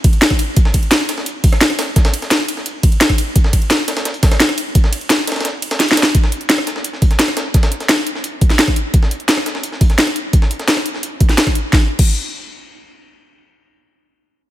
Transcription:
0.04 kick, closed hi-hat, ride
0.13 closed hi-hat
0.22 snare, closed hi-hat
0.30 kick, cross-stick, closed hi-hat
0.39 closed hi-hat, open hi-hat, ride
0.57 kick, closed hi-hat
0.65 snare
0.74 kick, closed hi-hat, ride
0.83 closed hi-hat
0.91 snare, closed hi-hat
1.09 snare, closed hi-hat, ride
1.18 snare
1.26 closed hi-hat
1.44 kick, closed hi-hat, open hi-hat, ride
1.52 cross-stick, snare, closed hi-hat
1.61 snare, closed hi-hat
1.70 cross-stick, closed hi-hat
1.79 snare, closed hi-hat, open hi-hat, ride
1.96 kick, snare, closed hi-hat
2.05 snare, closed hi-hat
2.14 closed hi-hat, ride
2.22 snare, closed hi-hat
2.31 snare, closed hi-hat
2.40 closed hi-hat
2.48 closed hi-hat, ride
2.57 snare
2.66 closed hi-hat
2.83 kick, closed hi-hat, ride
2.92 closed hi-hat
3.01 snare, closed hi-hat
3.09 kick, cross-stick, closed hi-hat
3.18 closed hi-hat, open hi-hat, ride
3.36 kick, closed hi-hat
3.44 snare
3.53 kick, closed hi-hat, ride
3.62 closed hi-hat
3.70 snare, closed hi-hat
3.88 snare, closed hi-hat, ride
3.97 snare, closed hi-hat
4.05 snare, closed hi-hat
4.14 closed hi-hat
4.23 kick, snare, closed hi-hat, ride
4.32 cross-stick, snare, closed hi-hat
4.40 snare, closed hi-hat
4.49 cross-stick, closed hi-hat
4.58 closed hi-hat, open hi-hat, ride
4.75 kick, closed hi-hat
4.84 snare
4.93 closed hi-hat, ride
5.01 closed hi-hat
5.10 snare, closed hi-hat
5.19 closed hi-hat
5.27 snare, closed hi-hat, ride
5.32 snare, closed hi-hat
5.36 snare, closed hi-hat
5.41 snare, closed hi-hat
5.45 snare, closed hi-hat
5.62 closed hi-hat, ride
5.71 snare, closed hi-hat
5.80 snare, closed hi-hat
5.88 snare, closed hi-hat
5.97 snare, closed hi-hat, open hi-hat, ride
6.03 snare
6.15 kick, closed hi-hat
6.24 snare
6.32 closed hi-hat
6.41 closed hi-hat
6.50 snare, closed hi-hat
6.58 cross-stick
6.67 snare, closed hi-hat
6.76 snare
6.84 closed hi-hat
6.93 snare
7.02 kick, closed hi-hat, open hi-hat
7.11 snare, closed hi-hat
7.19 snare, closed hi-hat
7.28 cross-stick, closed hi-hat
7.37 snare, closed hi-hat
7.54 kick, snare, closed hi-hat
7.63 snare, closed hi-hat
7.72 closed hi-hat
7.80 snare, closed hi-hat
7.89 snare, closed hi-hat
7.98 closed hi-hat
8.07 closed hi-hat
8.15 snare
8.24 closed hi-hat
8.41 kick, closed hi-hat
8.50 snare, closed hi-hat
8.59 snare, closed hi-hat
8.68 kick, cross-stick, closed hi-hat
8.76 closed hi-hat
8.94 kick, closed hi-hat
9.03 snare
9.11 closed hi-hat
9.20 closed hi-hat
9.29 snare, closed hi-hat
9.37 cross-stick
9.46 snare, closed hi-hat
9.55 snare
9.63 closed hi-hat
9.72 snare
9.81 kick, closed hi-hat, open hi-hat
9.90 snare, closed hi-hat
9.98 snare, closed hi-hat
10.07 cross-stick, closed hi-hat
10.16 closed hi-hat
10.33 kick, closed hi-hat
10.42 snare
10.51 closed hi-hat
10.59 snare, closed hi-hat
10.68 snare, closed hi-hat
10.77 cross-stick, closed hi-hat
10.86 closed hi-hat
10.94 snare
11.03 closed hi-hat
11.21 kick, closed hi-hat
11.29 snare, closed hi-hat
11.38 snare, closed hi-hat
11.47 kick, cross-stick, closed hi-hat
11.55 closed hi-hat
11.73 kick, snare
11.99 kick, crash

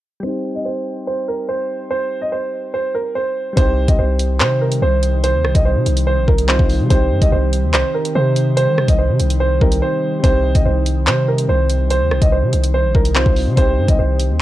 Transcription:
0.20 G3 C4 C5
0.26 D#4 G4
0.55 D#5
0.65 C5
1.07 C5
1.28 A#4
1.49 C5
1.91 C5
2.22 D#5
2.32 C5
2.74 C5
2.95 A#4
3.15 C5
3.53 C3 D#3 G3 C4
3.57 C2 D#4 C5, kick, closed hi-hat
3.61 G4
3.88 C2 D#5, kick, closed hi-hat
3.99 C2 C5
4.19 closed hi-hat
4.40 C3 C5, clap, closed hi-hat
4.61 A#4
4.72 closed hi-hat
4.82 C2 C5
5.03 closed hi-hat
5.24 C5, closed hi-hat
5.34 D#2
5.45 C2, cross-stick
5.55 C2 D#5, kick, closed hi-hat
5.65 C5
5.76 C3
5.86 C2, closed hi-hat
5.97 closed hi-hat
6.07 C5
6.17 A#1
6.28 C2 A#4, kick
6.38 closed hi-hat
6.47 G3 C4 D#4 C5, clap
6.51 F4
6.59 C2, kick
6.69 open hi-hat
6.80 C3
6.86 G3 C4
6.90 C2 G3 D#4 C5, kick, closed hi-hat
6.95 G4
7.11 G2
7.22 C2 D#5, kick, closed hi-hat
7.32 C2 C5
7.53 closed hi-hat
7.63 D#2
7.74 C2 C5, clap, closed hi-hat
7.94 A#4
8.05 closed hi-hat
8.15 C3 C5
8.36 closed hi-hat
8.57 C5, closed hi-hat
8.67 D#3
8.78 C3, cross-stick
8.88 C2 D#5, kick, closed hi-hat
8.98 C5
9.09 C3
9.20 C2, closed hi-hat
9.30 closed hi-hat
9.40 C5
9.60 C2 G3 C4 D#4 A#4, kick
9.64 G4
9.72 closed hi-hat
9.82 C5
10.20 G3 C4
10.24 C2 D#4 C5, kick, closed hi-hat
10.28 G4
10.55 C2 D#5, kick, closed hi-hat
10.65 C2 C5
10.86 closed hi-hat
11.07 C3 C5, clap, closed hi-hat
11.28 A#4
11.38 closed hi-hat
11.49 C2 C5
11.70 closed hi-hat
11.90 C5, closed hi-hat
12.01 D#2
12.11 C2, cross-stick
12.22 C2 D#5, kick, closed hi-hat
12.32 C5
12.43 C3
12.53 C2, closed hi-hat
12.64 closed hi-hat
12.74 C5
12.84 A#1
12.95 C2 A#4, kick
13.05 closed hi-hat
13.14 G3 C4 D#4 C5, clap
13.18 F4
13.26 C2, kick
13.36 open hi-hat
13.47 C3
13.53 G3 C4
13.57 C2 C3 D#3 D#4 C5, kick, closed hi-hat
13.61 G4
13.78 G2
13.88 C2 D#5, kick, closed hi-hat
13.99 C2 C5
14.20 closed hi-hat
14.30 D#2

